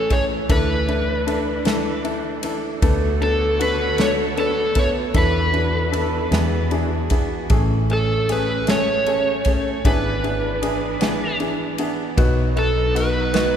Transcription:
Already playing: A1 E3 C#4 A4
0.10 E3 A3 C#4 G#4 C#5, kick, ride
0.49 D2 E3 D4 E4 A4 B4, kick, ride
0.88 A3 D4 E4 A4, ride
1.27 D4 E4 A4, ride
1.65 E3 D4 E4 A4, snare, ride
2.04 A3 D4 E4 A4, ride
2.43 E3 D4 E4 A4, ride
2.82 D2 D3 A3 B3 D4 F#4 A4 C#5, kick, ride
3.21 B3 D4 A4, ride
3.59 B3 D4 F#4 A4 B4, ride
3.98 A3 B3 D4 A4 C#5, snare, ride
4.37 B3 D4 A4, ride
4.75 A3 B3 D4 A4, kick, ride
4.79 C#5
5.14 E2 E3 D4 E4 F#4 A4 B4, kick, ride
5.53 D4 E4 A4, ride
5.92 D4 E4 A4, ride
6.31 E2 B3 D4 E4 F#4 G#4, snare, ride
6.71 D4 E4 G#4, ride
7.10 B3 D4 E4 G#4, kick, ride
7.50 A1 E3 A3 C#4 G#4, kick, ride
7.90 A3 C#4 G#4 A4, ride
8.29 A3 C#4 G#4 B4, ride
8.67 A3 C#4 G#4 C#5, snare, ride
9.06 A3 C#4 G#4, ride
9.45 A3 C#4 G#4, kick, ride
9.84 G#1 E3 B3 D4 E4 G#4 B4, kick, ride
10.23 D4 E4 G#4, ride
10.62 D4 E4 G#4, ride
11.01 B3 D4 E4 G#4, snare, ride
11.40 D4 E4 G#4, ride
11.78 B3 D4 E4 G#4, ride
12.17 B1 F#3 B3 D#4 F#4, kick, ride
12.56 B3 D#4 F#4 A4, ride
12.95 B3 D#4 F#4 B4, ride
13.33 B3 D#4 F#4, snare, ride

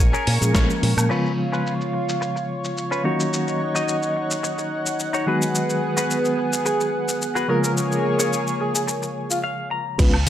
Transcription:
Already playing: A#4 G#5 C#6
0.00 A#1, shaker
0.13 C#4 G#4 A#4, shaker
0.27 A#2, open hi-hat
0.40 A#2 F3 G#3 A#3 C#4 G#4, closed hi-hat, shaker
0.54 A#1 F3 G#3 A#3 C#4 G#4 A#4 C#5, kick, snare, closed hi-hat, shaker
0.70 shaker
0.82 A#2, muted clean electric guitar stroke, open hi-hat
0.97 A#2, closed hi-hat, high woodblock, shaker
1.09 C#3 F3 G#3 B3 C#4 F4 B4 C#5, crash, shaker
1.26 shaker
1.52 C#4 F4 B4, shaker
1.67 shaker
1.81 shaker
1.93 muted clean electric guitar stroke
2.09 shaker
2.21 muted clean electric guitar stroke, shaker
2.36 muted clean electric guitar stroke, shaker
2.64 shaker
2.78 shaker
2.91 C#4 F4 B4, shaker
3.04 D#3 F#3 A#3 C#4 D#4 F#4 C#5 F#5
3.20 shaker
3.33 shaker
3.48 shaker
3.75 D#4 F#4 D#5, shaker
3.88 shaker
4.03 shaker
4.16 muted clean electric guitar stroke
4.31 shaker
4.43 muted clean electric guitar stroke, shaker
4.58 muted clean electric guitar stroke, shaker
4.86 shaker
4.99 shaker
5.13 D#4 F#4 C#5, shaker
5.26 D#3 F#3 G#3 B3 F#4 G#4 B4
5.42 shaker
5.55 shaker
5.70 shaker
5.97 F#4 G#4 B4, shaker
6.10 shaker
6.25 shaker
6.38 muted clean electric guitar stroke
6.53 shaker
6.65 G#4, muted clean electric guitar stroke, shaker
6.80 muted clean electric guitar stroke, shaker
7.08 shaker
7.22 shaker
7.35 F#4 G#4 B4, shaker
7.48 C#3 F3 G#3 A#3 C#4 F4 G#4 A#4 C#5
7.64 A#4, shaker
7.77 shaker
7.92 shaker
8.19 C#4 G#4 C#5, shaker
8.33 shaker
8.47 shaker
8.60 G#4, muted clean electric guitar stroke
8.75 G#4, shaker
8.88 muted clean electric guitar stroke, shaker
9.02 muted clean electric guitar stroke, shaker
9.30 F4, shaker
9.44 F5
9.71 A#5
9.98 C#2 G#3 B3 C#4 F4 B4 F5 C#6, kick, closed hi-hat, crash, shaker
10.14 high woodblock

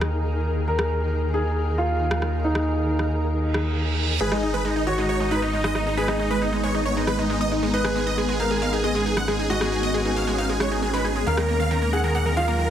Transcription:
Already playing: D#2 D#3 D#4 G#4 A#4
0.01 cross-stick
0.68 A#4
0.79 cross-stick
1.34 G#4
1.78 F4
2.11 cross-stick
2.22 cross-stick
2.44 D#4
2.55 cross-stick
2.99 cross-stick
3.32 reverse cymbal
3.54 cross-stick
4.20 G#1 G#3 B3 D#4 G#4 B4
4.32 G#3 D#4, cross-stick
4.43 D#4
4.54 G#3 B4
4.65 G#3 D#4
4.76 D#4
4.87 G#3 F#4 C#5
4.98 G#3 D#4
5.09 D#4 C#5
5.20 G#3 D#4
5.31 G#3 D#4 B4
5.42 D#4
5.53 G#3 D#4
5.64 G#3 D#5, cross-stick
5.75 D#4, cross-stick
5.86 G#3 D#4
5.97 G#3 G#4 B4
6.08 D#4, cross-stick
6.19 G#3 D#4
6.31 G#3 B4
6.42 D#4
6.52 G#3 D#4
6.63 G#3 C#5
6.75 D#4
6.86 G#3 C#5
6.97 G#3 D#4
7.07 D#4 B4, cross-stick
7.19 G#3 D#4
7.30 G#3 D#4
7.41 D#4 D#5
7.52 G#3 D#4
7.63 G#3 D#4
7.73 C#4 D#4 B4 D#5
7.85 G#3 G#4, cross-stick
7.96 G#3 G#4
8.07 D#4 D#5
8.18 G#3 G#4
8.29 G#3 G#4
8.40 D#4 A#4 F5
8.51 G#3 G#4
8.62 G#3 F5
8.73 D#4 G#4
8.84 G#3 G#4 D#5
8.95 G#3 G#4
9.06 D#4 G#4
9.17 G#3 F#5, cross-stick
9.28 G#3 G#4, cross-stick
9.39 D#4 G#4
9.50 G#3 F#4 D#5
9.61 G#3 G#4, cross-stick
9.72 D#4 G#4
9.83 G#3 D#5
9.94 G#3 G#4
10.05 D#4 G#4
10.16 G#3 F5
10.27 G#3 G#4
10.38 D#4 F5
10.49 G#3 G#4
10.60 G#3 C#5, cross-stick
10.71 D#4 G#4
10.82 G#3 G#4
10.93 G#3 B4
11.04 D#4 G#4
11.16 G#3 G#4
11.27 D#2 D#3 F#3 D#4 A#4 F5
11.37 D#3 A#4, cross-stick
11.48 A#3 A#4
11.60 D#3 F5
11.71 D#3 A#4
11.82 A#3 A#4
11.93 D#3 G#4 F#5
12.04 D#3 A#4
12.15 A#3 F#5
12.26 D#3 A#4
12.37 D#3 F4 F5
12.48 A#3 A#4
12.59 D#3 A#4

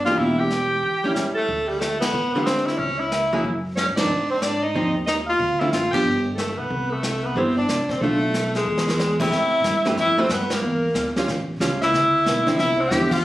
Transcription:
Already playing: G1
0.05 E3 A#3 D4 F4 G4 F5, snare
0.18 E1 E4 E5, brush sweep, kick
0.38 G4 G5
0.51 snare, hi-hat pedal
0.83 A1, brush sweep, kick
1.04 G3 C#4 E4
1.15 A2 G3 G4, snare, hi-hat pedal
1.34 A3 A4
1.48 D2, brush sweep, kick
1.67 G3 G4
1.79 A3 A4, snare, hi-hat pedal
2.00 B3 B4, snare, ride
2.12 A2, brush sweep
2.32 D3 G3 B3 B4
2.36 C4 F4
2.45 C4 C5, snare, hi-hat pedal
2.58 snare
2.65 E4 E5, snare
2.77 C#2 C#4 C#5, brush sweep, kick
2.98 E4 E5
3.12 snare, hi-hat pedal
3.33 F#3 A#3 E4 G#4
3.44 F#2, brush sweep, kick
3.76 C#4 C#5, snare, hi-hat pedal
3.87 G#2
3.96 F#2 F3 C4 D4 D#4 D5, snare, ride
4.09 G#2, brush sweep
4.29 C4 C5
4.41 D4 D5, snare, hi-hat pedal
4.62 D#4 D#5
4.74 D#2 F3 C4 D#4, brush sweep, kick
5.06 D#4 D#5, snare, hi-hat pedal
5.26 F4 F5
5.39 D2, brush sweep, kick
5.59 D3 A3 C4 E4 F4 E5
5.71 F#1 F4 F5, snare, hi-hat pedal
5.91 F3 B3 D4 G4 G5, kick, ride
6.04 G1, brush sweep
6.35 A3 A4, snare, hi-hat pedal
6.58 B1 B3 B4
6.70 C2, brush sweep, kick
6.90 A3 A4
7.03 snare, hi-hat pedal
7.23 B3 B4
7.35 G1 G3 B3 C4 E4 C5, brush sweep, kick
7.57 D4 D5
7.68 C2, snare, hi-hat pedal
7.89 C4 C5, kick, snare
8.00 B1 A3 D4 F4 A4, brush sweep, kick
8.34 snare, hi-hat pedal
8.54 G#3 G#4, snare
8.65 E2
8.78 snare
8.89 snare
8.99 snare, hi-hat pedal
9.20 A3 C4 E4 G4 B4 E5, kick, crash
9.31 A2, brush sweep, kick, snare
9.64 G2, kick, snare, hi-hat pedal
9.85 A3 C4 G4 B4, snare
9.97 F2 E4 E5, brush sweep, kick, snare
10.18 A3 C4 G4 B4 C5
10.29 G2 B4, kick, snare, hi-hat pedal
10.33 B3
10.50 A#4, snare, ride
10.54 A#3
10.61 E2, brush sweep
10.95 D2, kick, snare, hi-hat pedal
11.16 G3 C#4 F4, snare
11.27 A1, brush sweep, kick, snare
11.60 C#2 G3 C#4 F4, kick, snare, hi-hat pedal
11.81 E4 E5, snare
11.93 D2, brush sweep, kick, snare
12.26 B1, kick, snare, hi-hat pedal
12.47 D3 F3 C4 E4, snare
12.56 C2 E4 E5, brush sweep, kick, snare
12.77 C4 C5
12.89 E2 D3 F3 C4 E4 G4 G5, kick, snare, hi-hat pedal
13.10 F4 F5, kick, crash

